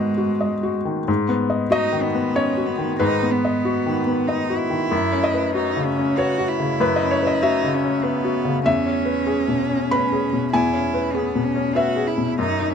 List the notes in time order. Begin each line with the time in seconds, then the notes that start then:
Already playing: G#2 D#3 G#3 B3 F#4 D#5
0.18 F#4
0.41 D#5
0.63 F#4
0.85 D#3
1.08 G#2
1.29 B3
1.50 D#5
1.71 D#4 F#4 D#5
1.92 D#3
2.03 B3
2.15 B3
2.35 C#4 C#5 D#5
2.57 F#4
2.66 B3
2.78 D#3
2.99 G#2 D#4 B4
3.23 B3
3.31 B3
3.45 D#5
3.65 F#4
3.86 D#3
4.07 B3
4.28 D#4 D#5
4.50 F#4
4.58 E4
4.70 D#3
4.91 F#2
5.12 C#4
5.24 D#5
5.34 B4
5.55 D#4 F#4
5.77 C#3
5.86 C#4
5.98 C#4
6.17 F#4 B4 C#5
6.38 F#4
6.49 E4
6.60 C#3
6.80 F#2 B4
6.96 D#5
7.01 C#4
7.11 C#5
7.22 B4
7.27 D#5
7.43 D#4 F#4 E5
7.64 C#3
7.74 C#4
7.84 C#4
8.03 B3 B4
8.25 F#4
8.45 C#3
8.65 E2 C#4 E5
8.86 C#4
9.05 B4
9.27 G#4
9.48 B2
9.70 C#4
9.91 B4 B5
10.12 G#4
10.33 B2
10.53 E2 E4 G#5
10.73 C#4
10.94 B4
11.13 B3 G#4
11.35 B2
11.44 C#4
11.55 C#4
11.75 F#4 B4 E5
11.96 G#4
12.07 E4
12.18 B2
12.39 F#2 D#4
12.60 D#4
12.70 C#4